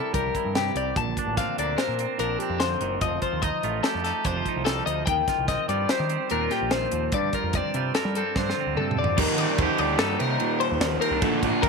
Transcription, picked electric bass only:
0.14 C2
0.45 G2
0.75 C2
0.96 A#1
1.26 A1
1.58 D2
1.88 A#2
2.19 A#1
2.50 F2
2.81 F#1
3.01 F1
3.33 D#2
3.63 A1
3.95 F2
4.25 F1
4.56 C2
4.86 D2
5.07 D#2
5.38 C2
5.69 G2
6.00 D#3
6.31 D#2
6.61 A#1
6.92 D#2
7.13 G2
7.43 F2
7.74 C3
8.05 G3
8.35 G2
8.67 D2
8.75 G2
8.95 F2
9.18 D#2
9.37 D#3
9.58 D#2
9.79 D2
9.99 G2
10.21 C3
10.71 D#2
10.80 D#2
11.11 C2
11.22 A#1
11.43 A1
11.63 D2

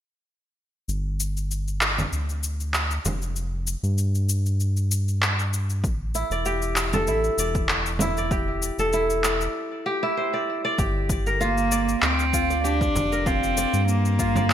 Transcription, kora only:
6.15 E4
6.32 D5
6.46 G4
6.94 A4
7.08 E4
7.39 D5
8.01 E4
8.18 D5
8.32 G4
8.79 A4
8.93 E4
9.25 D5
9.86 G4
10.03 E4
10.17 C5
10.34 D5
10.65 D5
10.79 G4
11.27 A#4
11.41 F4
11.72 D5
12.34 F4
12.50 D5
12.64 G4
13.12 A#4
13.26 F4
13.58 D5
14.19 F4
14.36 D5
14.50 G4

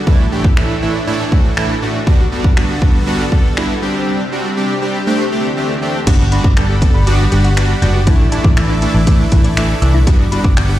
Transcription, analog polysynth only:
0.07 A2 E3 A3 D4 E4
0.32 A2 E3 A3 D4 G4
0.57 A2 E3 A3 D4 E4
0.82 A2 E3 A3 D4 E4
1.07 A2 E3 A3 D4 E4
1.32 A2 E3 A3 D4 F#4
1.57 A2 E3 A3 D4 E4
1.82 A2 E3 A3 D4 F#4
2.07 G3 B3 D4 F#4
2.32 G3 B3 D4 F#4
2.57 G3 B3 D4 F#4
2.82 G3 B3 D4 F#4
3.07 G3 B3 D4 F#4
3.32 G3 B3 D4 A4
3.57 G3 B3 D4 E4
3.82 G3 C4 D4 G4
4.32 G3 C4 D4 F#4
4.57 G3 C4 D4 G4
4.82 G3 C4 D4 G4
5.07 A3 C4 D4 G4
5.32 A3 C4 D4 G4
5.57 A3 C4 D4 G4
5.82 A3 C4 D4 G4
6.07 G3 B3 D4 F#4
6.32 G3 B3 D4 F#4
6.57 G3 B3 D4 A4
6.82 G3 B3 D4 A4
7.07 G3 B3 D4 F#4
7.32 G3 B3 D4 F#4
7.57 G3 B3 D4 F#4
7.82 G3 B3 D4 F#4
8.07 E3 A3 D4 E4
8.31 E3 A3 D4 E4
8.57 E3 A3 D4 E4
8.82 E3 A3 D4 E4
9.07 E3 A3 D4 E4
9.32 E3 A3 D4 E4
9.57 E3 A3 D4 E4
9.82 E3 A3 D4 E4
10.07 G3 B3 D4 F#4
10.32 G3 B3 D4 F#4
10.57 G3 B3 D4 F#4

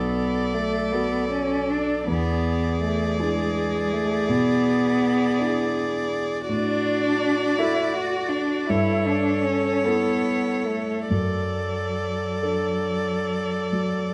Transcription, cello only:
Already playing: B3
0.53 A3
0.92 B3
1.30 C#4
1.70 D4
2.08 B3
2.82 A3
3.20 G#3
3.93 A3
4.29 B3
6.49 D4
7.59 E4
7.94 F#4
8.30 D4
8.68 E4
9.06 D4
9.45 C#4
9.85 B3
10.67 A3
11.09 F#3

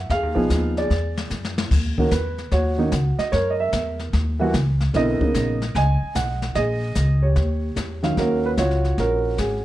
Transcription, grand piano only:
0.11 G#4 F5
0.35 F3 B3 D#4 G#4
0.78 G#4 D5
1.98 D#3 A#3 C#4 F#4 A#4
2.12 B4
2.52 F#4 C#5
2.78 D#3 A#3 C#4 D#4
3.19 D#5
3.32 A#4 C#5
3.50 D#5
3.60 E5
4.39 E3 G3 A#3 F#4
4.93 D3 B3 C4 E4 A#4 D#5
5.20 C#3 A#3 B3 D#4
5.76 D#5 G#5
6.16 F#5
6.55 G#4 D#5
7.22 G4 C#5
8.03 D#3 F#3 C#4 F5
8.18 C#4 F#4 A#4
8.46 B4
8.59 F4 F#4 C#5
8.99 C#4 F#4 A#4
9.39 G#4

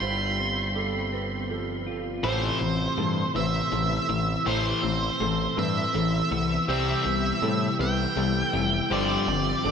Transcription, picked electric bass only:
0.01 G1
2.24 A1
2.61 A1
2.98 G2
3.35 A1
3.72 A1
4.09 A1
4.46 A1
4.83 A1
5.21 A1
5.58 G2
5.95 A1
6.32 C2
6.69 C2
7.06 C2
7.42 A2
7.79 C2
8.16 C2
8.54 F1
8.91 G1
9.28 G1
9.64 G1

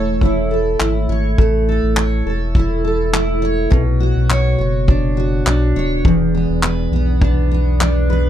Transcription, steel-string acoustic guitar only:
Already playing: E3 A3 E4 A4 C#5
0.23 E4
0.51 A4
0.80 E4
1.09 C#5
1.38 A3
1.69 A4
1.97 C#5
2.27 A4
2.56 E4
2.85 A4
3.13 E4
3.42 C#5
3.70 B2
4.00 F#4
4.31 C#5
4.58 F#4
4.88 D4
5.17 F#4
5.47 D4
5.76 C#5
6.05 E2
6.35 B3
6.64 B4
6.93 B3
7.22 D4
7.51 B3
7.81 D4
8.10 B4

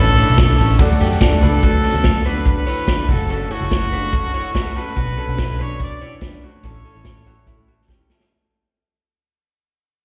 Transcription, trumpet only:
Already playing: A4
0.41 A4
1.43 A4
2.27 B4
2.48 B4
3.10 A4
3.31 A4
3.52 F#4
4.77 B4
5.62 C#5
5.83 D5
6.44 C#5

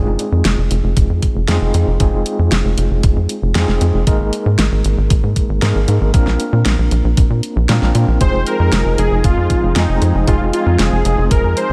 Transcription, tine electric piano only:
Already playing: G#3 C4 D#4 F4 G#4
1.48 G#3 C4 D#4 F4 G#4
2.00 G#3 C4 D#4 F4 G#4
3.55 G#3 C4 D#4 F4 G#4
4.07 G#3 A#3 D#4 G#4 A#4
5.62 G#3 A#3 D#4 G#4 A#4
6.14 A#3 C4 D4 F4 A#4
7.69 A#3 C4 D4 F4 A#4
8.21 G#3 C4 D#4 F4 G#4
9.76 G#3 C4 D#4 F4 G#4
10.27 G#3 C4 D#4 F4 G#4

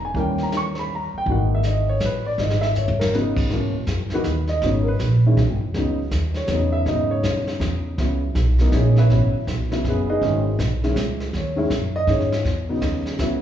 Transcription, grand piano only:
0.05 G#5
0.16 E3 G3 A#3 C#4
0.20 G5
0.43 A#5
0.57 C#6
0.79 B5
0.95 A#5
1.18 G5
1.29 E3 A#3 D#4 F#4 F#5
1.55 E5
1.67 D#5
1.89 C#5
2.05 B4
2.26 D5
2.40 D#5
2.61 E5
2.78 C#5
2.99 A#4
3.14 C#3 F#3 B3 D#4 B4
3.51 B2 E3 A#3 C#4
4.13 E3 A#3 D#4 F#4 B4
4.49 D#5
4.64 C#3 F#3 B3 D#4 C#5
4.83 A#4
4.88 B4
5.26 D#3 G#3 C#4 E4
5.76 C#3 F#3 B3 D#4
6.37 C#5
6.51 C#3 F#3 B3 D#4
6.72 E5
6.88 C#3 F#3 B3 D#4 D#5
7.11 C#5
7.99 C#3 F#3 B3 E4
8.60 E3 A#3 B3 D#4
8.74 C#4 E4 G#4 C#5
8.98 E4 B4 C#5 E5
9.11 C#3 F#3 B3 E4
9.71 C#3 F#3 B3 E4
9.89 B3 E4 G#4 B4
10.10 D#4 G#4 B4 D#5
10.22 D#3 G#3 C#4 E4
10.84 D#3 G#3 C#4 E4
11.37 C#5
11.56 D#3 G#3 C#4 E4
11.96 D#5
12.08 D#3 G#3 C#4 E4 C#5
12.69 C#3 F#3 B3 D#4
13.20 C#3 F#3 B3 E4

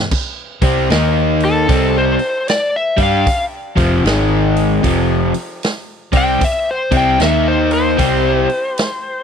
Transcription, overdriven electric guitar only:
0.12 muted overdriven electric guitar stroke
0.62 C3 G3 C4
0.90 D#3 A#3 D#4
1.68 C3 G3 C4
2.97 G3 D4 G4
3.26 muted overdriven electric guitar stroke
3.76 F2 C3 F3
4.04 G#2 D#3 G#3
4.83 F2 C3 F3
6.12 C3 G3 C4
6.41 muted overdriven electric guitar stroke
6.91 C3 G3 C4
7.19 D#3 A#3 D#4
7.97 C3 G3 C4

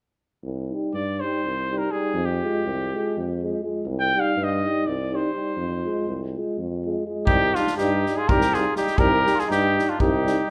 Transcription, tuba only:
0.43 C2
0.94 G2
1.45 C2
2.14 F2
2.64 C2
3.17 F2
3.85 C2
4.37 G2
4.87 C2
5.57 F2
6.07 C2
6.58 F2
7.27 C2
7.79 G2
8.29 C2
8.99 C2
9.50 G2
10.00 C2

